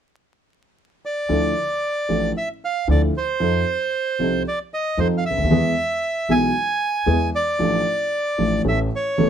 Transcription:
1.05 D5
1.29 D2 D3 F3 D4 E4 A4
2.09 A1 A2 F3 D4 E4 A4
2.37 E5
2.65 F5
2.88 D2 D3 F3 D4 E4 A4 D5
3.17 C5
3.40 F2 F3 C4 D#4 A4
4.19 C2 C3 F3 C4 D#4 A4
4.48 D5
4.74 D#5
4.98 F2 F3 C4 D#4 A4 C5
5.18 F5
5.26 E5
5.30 C#2
5.37 D2
5.43 D#2
5.50 E2 E3 G#3 B3 G#4
6.29 B1 B2 E3 G#3 B3 G#4 G#5
7.06 E2 E3 G#3 B3 G#4
7.35 D5
7.59 A1 A2 F3 A3 D4 A4
8.38 A1 A2 F3 A3 D4 A4
8.64 A1 A2 E3 A3 C#4 A4
8.68 E5
8.96 C#5
9.18 E1 E2 E3 A3 C#4 A4

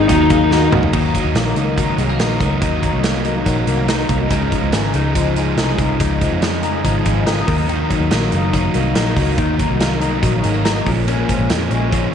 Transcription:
Already playing: G#2 G#3 C4 D#4 G#4
0.08 D#2 D#3 F#3 A#3 D#4 F#4, kick, closed hi-hat
0.29 D#2 F#3 A#3 D#4 G#4, kick, closed hi-hat
0.50 D#3 F#3 A#3 D#4 F#4, snare
0.71 C#2 F#3 A#3 D#4 F#4, mid tom
0.83 floor tom
0.93 D#2 D#3 F#3 A#3 D#4, kick, crash
1.14 F#3 A#3 D#4, kick, closed hi-hat
1.25 D#2
1.35 A#1 D#3 F#3 A#3 D#4, snare, closed hi-hat
1.55 C#2 F#3 A#3 D#4, closed hi-hat
1.77 D#3 F#3 A#3 D#4, kick, closed hi-hat
1.98 C2 F#3 G#3 A#3 D#4, closed hi-hat
2.09 A#3
2.19 A#1 D#3 F#3 A#3 D#4, snare, closed hi-hat
2.39 C#2 F#3 A#3 D#4, kick, closed hi-hat
2.60 D#2 D#3 F#3 A#3 D#4, kick, closed hi-hat
2.82 F#3 A#3 D#4, kick, closed hi-hat
2.94 C2
3.03 D#3 F#3 A#3 D#4, snare, closed hi-hat
3.24 F#3 A#3 D#4, closed hi-hat
3.45 A#1 D#3 F#3 A#3 D#4, kick, closed hi-hat
3.66 C2 F#3 A#3 D#4, closed hi-hat
3.87 D#3 F#3 A#3 D#4, snare, closed hi-hat
4.09 C2 F#3 A#3 D#4, kick, closed hi-hat
4.29 C#2 C#3 F3 G#3 D#4, kick, closed hi-hat
4.51 F3 G#3 D#4, kick, closed hi-hat
4.62 C#2
4.72 G#1 C#3 F3 G#3 D#4, snare, closed hi-hat
4.93 C#2 F3 G#3 D#4, closed hi-hat
5.14 C#3 F3 G#3 D#4, kick, closed hi-hat
5.36 F3 G#3 D#4, closed hi-hat
5.57 C2 C#3 F3 G#3 D#4, snare, closed hi-hat
5.78 C2 F3 G#3 D#4, kick, closed hi-hat
5.99 C#2 C#3 F3 G#3 D#4, kick, closed hi-hat
6.21 F3 G#3 D#4, kick, closed hi-hat
6.32 F2
6.41 C#3 F3 G#3 D#4, snare, closed hi-hat
6.63 F3 G#3 D#4, closed hi-hat
6.84 G#1 C#3 F3 G#3 D#4, kick, closed hi-hat
7.05 G#1 F3 G#3 D#4, kick, closed hi-hat
7.26 C#3 F3 G#3 D#4, snare, closed hi-hat
7.47 D#2 D#3 F#3 A#3 D#4, kick, open hi-hat
7.68 D#3 F#3 A#3 D#4, closed hi-hat
7.90 F#3 A#3 D#4, kick, closed hi-hat
8.00 D#2
8.11 A#1 D#3 F#3 A#3 D#4, snare, closed hi-hat
8.31 F#1 F#3 A#3 D#4, closed hi-hat
8.53 D#3 F#3 A#3 D#4, kick, closed hi-hat
8.74 C2 F#3 A#3 D#4, closed hi-hat
8.94 A#1 D#3 F#3 A#3 D#4, snare, closed hi-hat
9.16 C#2 F#3 A#3 D#4, kick, open hi-hat
9.37 D#2 D#3 F#3 A#3 D#4, kick, closed hi-hat
9.59 F#3 A#3 D#4, kick, closed hi-hat
9.70 C2
9.80 D#3 F#3 A#3 D#4, snare, closed hi-hat
10.01 F#3 A#3 D#4, closed hi-hat
10.22 A#1 D#3 F#3 A#3 D#4, kick, closed hi-hat
10.43 G#1 F#3 G#3 A#3 D#4, closed hi-hat
10.54 A#3
10.65 D#3 F#3 A#3 D#4, snare, closed hi-hat
10.86 A#1 A#2 F3 G#3 C#4, kick, open hi-hat
11.07 A#2 F3 G#3 C#4, closed hi-hat
11.28 F3 G#3 C#4, kick, closed hi-hat
11.39 A#1
11.50 F2 A#2 F3 G#3 C#4, snare, closed hi-hat
11.70 A#1 F3 G#3 C#4, closed hi-hat
11.92 A#2 F3 G#3 C#4, kick, closed hi-hat

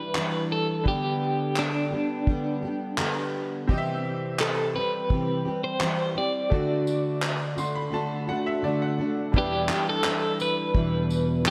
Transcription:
Already playing: E3 G3 D4 E4 G4 B4 E5
0.14 E3 G3 D4 E4, clap
0.52 A4
0.84 D3 G3 B3 G4, kick
0.88 G4 D5
1.57 D4, clap
1.90 G3 B3 G4
2.27 D3 G3 B3 G4, kick
2.62 G3 B3 G4
2.97 D3 G3 B3 G4, clap
3.67 C3 E3 G3 C4 G4 D#5, kick
3.78 E5
4.40 A4, clap
4.74 G3 C4 G4 B4
5.09 C3 E3 G3 C4 G4, kick
5.45 G3 C4 G4
5.64 C5
5.80 E3 G3 C4 G4, clap
6.15 G3 C4 G4 D5
6.50 D3 A3 D4 F#4, kick
6.54 D5
6.87 tambourine
7.23 clap
7.57 A3 D4 F#4 C6, tambourine
7.75 B5
7.92 D3 A3 D4 F#4 A5
8.28 A3 D4 F#4 F#5
8.46 E5
8.63 D3 A3 D4 F#4 D5
8.82 F#5
8.98 A3 D4 F#4
9.32 E2 B2 E3 G3 D4 E4, kick
9.36 G4 B4
9.68 E3 G3 D4 E4, clap, tambourine
9.89 A4
10.03 E3 G3 D4 E4, clap
10.40 B4, tambourine
10.73 E2 B2 E3 G3 D4 E4, kick
11.10 tambourine
11.44 E3 G3 D4, clap

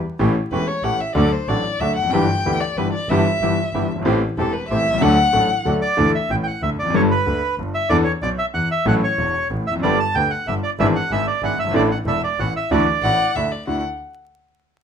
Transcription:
0.19 A1 A2 E3 A3 C#4 G4
0.51 E1 E2 E3 A3 C#4 G4 B4
0.67 C#5
0.83 A1 A2 E3 A3 C#4 G4 F#5
1.00 E5
1.15 D2 D3 F#3 A3 D4 F#4 A4 D5
1.32 C5
1.48 A1 A2 F#3 A3 D4 F#4 A4 D5
1.80 D2 D3 F#3 A3 D4 F#4 A4 E5
1.96 F1 F#5
2.02 E2 F2
2.10 G1 F#2 G2 E3 B3 D4 E4 G4 G5
2.14 G4
2.45 D2 D3 E3 B3 D4 E4 G4
2.60 D5
2.77 G1 G2 E3 B3 D4 E4 G4 B4
2.93 D5
3.09 G1 G2 E3 G3 B3 E4 G4 E5
3.41 G1 G2 E3 G3 B3 E4 G4
3.73 G1 G2 E3 G3 B3 E4 G4
3.90 G1
3.95 F#1 G1
4.02 G#1 A1 A2 E3 A3 C4 G4
4.06 G4
4.38 E1 E2 E3 A3 C4 G4 A4
4.53 B4
4.69 A1 A2 E3 A3 C4 G4 E5
4.86 C2
4.91 B1 C2
4.98 C#2 D2 F#3 D4
5.02 D2 D3 A3 D4 F#4 A4 F#5
5.33 A1 A2 F#3 A3 D4 F#4 A4
5.65 D2 D3 F#3 A3 D4 F#4 A4
5.82 D5
5.97 D2 D3 E3 A3 D4 A4
6.15 E5
6.30 A1 A2 G5
6.43 F#5 G5
6.62 D2 D3 E5
6.78 F1 D5
6.82 E2
6.86 F2 F#2
6.94 G1 G2 G3 B3 D4 A4 C#5
7.11 B4
7.26 D2 D3
7.58 G1 G2
7.74 E5
7.89 E2 E3 B3 D4 A4 D5
8.04 C#5
8.22 B1 B2 D5
8.38 E5
8.54 E2 E3 F#5
8.71 E5
8.86 A1 A2 F#3 C#4 E4 A4 F#5
9.03 C#5
9.18 E1 E2
9.50 A1 A2
9.67 F1 E5
9.71 E2 F2
9.79 G1 F#2 A3 B3 D5
9.83 G2 G3 B3 D4 G4 A4
10.00 A5
10.15 D2 D3 A3 B3 G4 G5
10.31 F#5
10.47 G1 G2 A3 B3 G4 E5
10.63 D5
10.78 G#1 G#2 E3 B3 D4 E4 G#4 E5
10.96 F#5
11.11 G#1 G#2 D4 E4 G#4 E5
11.27 D5
11.42 G#1 G#2 D4 E4 G#4 F#5
11.58 G1 E5
11.64 F#1 G1
11.71 G#1 A1 A2 E3 A3 D4 A4
11.75 E4 A4 D5
11.91 F#5
12.06 E1 E2 D4 E4 A4 E5
12.24 D5
12.39 A1 A2 B3 C#4 A4 F#5
12.56 E5
12.71 D2 D3 E3 A3 D4 E4 F#4 D5
13.02 A1 A2 D4 E4 F#4 F#5
13.35 D2 D3 D4 E4 F#4 E5
13.51 D5
13.67 D2 D4 E4 F#4 F#5

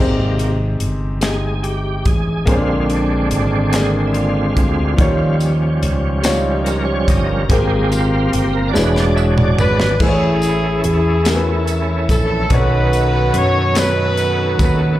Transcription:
Already playing: G#1 C3 G#3 A#3 D#4 G4
0.00 C5
0.39 closed hi-hat
0.80 G1, closed hi-hat
1.21 G#3 D#4 G4 G#4 D#5, snare, closed hi-hat
1.63 G4, closed hi-hat
2.05 A1 G#4, kick, closed hi-hat
2.46 A#1 A#2 D3 G#3 A#3 C4 C#4 F4 G#4 C5, kick, closed hi-hat
2.54 D4
2.90 D4, closed hi-hat
3.31 G#1 D4, closed hi-hat
3.72 A#3 D4 G#4 D5, snare, closed hi-hat
4.07 E4
4.14 F4, closed hi-hat
4.57 D2, kick, closed hi-hat
4.97 D#2 D#3 F3 G3 C#4 D#4 F4, kick, closed hi-hat
5.01 G3 C#5
5.40 closed hi-hat, tambourine
5.83 C#2, closed hi-hat
6.22 G3 D#4 F4 C#5, snare, closed hi-hat, tambourine
6.64 A#4, closed hi-hat, tambourine
6.85 C#5
7.08 G1 D#5, kick, closed hi-hat, tambourine
7.27 A#4
7.49 G#1 A#2 G#3 A#3 C4 G4 G#4 A#4, kick, closed hi-hat
7.92 F4, closed hi-hat, tambourine
8.32 G1 G4, closed hi-hat
8.53 A#4
8.68 D5
8.73 E1 E3 F#3 G#3 D4 E4 B4, snare, tambourine
8.78 B4
8.94 D5, snare
9.16 E5, tambourine
9.38 D5, mid tom
9.59 G#1 B4, floor tom, tambourine
9.80 snare
9.99 A1 A2 E3 A3 C#4 E4 G#4 C5, kick, crash
10.04 G#4
10.08 C#5
10.42 closed hi-hat, tambourine
10.84 E2 C#4 E4 G#4, closed hi-hat
11.25 A3 E4 G#4 A#4, snare, closed hi-hat, tambourine
11.35 B4
11.67 closed hi-hat, tambourine
12.09 A#1 A4, kick, closed hi-hat, tambourine
12.49 B1 B2 D#3 B3 C#4 D#4 F#4 A4, kick, closed hi-hat
12.53 B4 C#5
12.93 closed hi-hat, tambourine
13.34 F#2 C#5, closed hi-hat
13.75 B3 D#4 F#4 A4 B4 C#5, snare, closed hi-hat, tambourine
13.79 B4
14.17 closed hi-hat, tambourine
14.59 D#2 B4, kick, closed hi-hat, tambourine
14.63 B4

